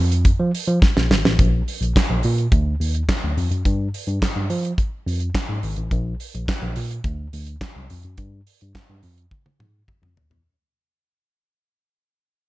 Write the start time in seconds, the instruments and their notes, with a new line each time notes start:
Already playing: tine electric piano F2
0.12 closed hi-hat
0.25 kick, closed hi-hat
0.40 tine electric piano F3
0.55 open hi-hat
0.68 tine electric piano F3, closed hi-hat
0.82 kick, snare
0.97 tine electric piano A#1, snare
1.10 tine electric piano G#1, snare
1.25 tine electric piano A1, snare
1.39 tine electric piano A#1, kick, closed hi-hat
1.68 open hi-hat
1.82 tine electric piano A#1, closed hi-hat
1.96 kick, snare, clap, closed hi-hat
2.10 tine electric piano A#1
2.23 tine electric piano A#2, open hi-hat
2.38 closed hi-hat
2.52 tine electric piano D2, kick, closed hi-hat
2.80 tine electric piano D#2, open hi-hat
2.95 closed hi-hat
3.09 kick, snare, clap, closed hi-hat
3.23 tine electric piano D2
3.37 tine electric piano F2, open hi-hat
3.51 tine electric piano F#2, closed hi-hat
3.65 tine electric piano G2, kick, closed hi-hat
3.94 open hi-hat
4.08 tine electric piano G2, closed hi-hat
4.22 kick, snare, clap, closed hi-hat
4.36 tine electric piano G2
4.50 tine electric piano F3, open hi-hat
4.65 closed hi-hat
4.78 kick, closed hi-hat
5.07 tine electric piano F2, open hi-hat
5.20 closed hi-hat
5.35 kick, snare, clap, closed hi-hat
5.49 tine electric piano G#2
5.63 tine electric piano G#1, open hi-hat
5.76 tine electric piano A1, closed hi-hat
5.91 tine electric piano A#1, kick, closed hi-hat
6.20 open hi-hat
6.34 tine electric piano A#1, closed hi-hat
6.48 kick, snare, clap, closed hi-hat
6.62 tine electric piano A#1
6.76 tine electric piano A#2, open hi-hat
6.91 closed hi-hat
7.04 tine electric piano D2, kick, closed hi-hat
7.33 tine electric piano D2, open hi-hat
7.47 closed hi-hat
7.61 kick, snare, clap, closed hi-hat
7.76 tine electric piano C2
7.90 tine electric piano F2, open hi-hat
8.03 tine electric piano F#2, closed hi-hat
8.18 tine electric piano G2, kick, closed hi-hat
8.47 open hi-hat
8.61 tine electric piano G2, closed hi-hat
8.75 kick, snare, clap, closed hi-hat
8.90 tine electric piano G2
9.03 tine electric piano F2, open hi-hat
9.18 closed hi-hat
9.31 kick, high tom
9.46 high tom
9.60 tine electric piano G#2, mid tom
9.88 kick, mid tom
10.02 tine electric piano F2, mid tom
10.16 tine electric piano D#2, floor tom
10.30 tine electric piano E2, floor tom